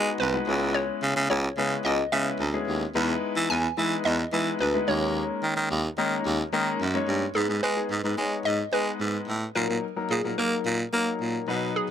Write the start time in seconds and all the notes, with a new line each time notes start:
Already playing: G#3 B3 D#4 F#4 B4 D#5
0.20 C2 B4
0.33 G#3 B3 D#4 F#4 B4
0.47 C#2 G#3 B3 C#4 E4 B4
0.74 C#5
1.02 C#3
1.16 C#3
1.30 C#2 C#5
1.57 C#3 G#3 B3 C#4 E4 B4
1.85 C#2 D#5
2.12 C#3 G#3 B3 C#4 E4 B4 E5
2.40 D2
2.53 G#3 B3 C#4 E4 G#4
2.67 D#2
2.95 E2 G#3 B3 D#4 E4 B4
3.36 E3
3.50 E2 G#5
3.77 E3 G#3 B3 D#4 E4 B4
4.05 E2 D#5
4.32 E3 G#3 B3 D#4 E4 B4
4.60 D2 B4
4.74 G#3 B3 D#4 E4 B4
4.88 D#2 G#3 A#3 C#4 D#4 A#4 C#5
5.43 D#3
5.56 D#3
5.70 D#2
5.98 D#3 G#3 A#3 C#4 D#4 A#4
6.25 D#2
6.53 D#3 G#3 A#3 C#4 D#4 A#4
6.80 F#2
6.94 G#3 A#3 C#4 D#4 C#5
7.08 G2
7.35 G#2 G#3 B3 D#4 G#4 B4
7.49 G#2
7.63 G#3 B4
7.76 G#3 B3 D#4 G#4
7.90 G#2
8.04 G#2 G#3 B3 D#4 B4
8.18 G#3 B3 D#4 C#5
8.45 G#2 D#5
8.72 G#3 B3 D#4 B4
9.00 G#2
9.28 A2
9.55 A#2 F#3 A#3 D#4 A#4
9.69 A#2
9.96 F#3 A#3 D#4 A#4
10.11 A#2 G#4
10.24 A#2 F#3 A#3 D#4 A#4
10.38 F#3 A#3 D#4 A#4
10.66 A#2
10.93 F#3 A#3 D#4 A#4
11.21 A#2
11.48 B2 F#3 B3 D#4 B4
11.76 G#4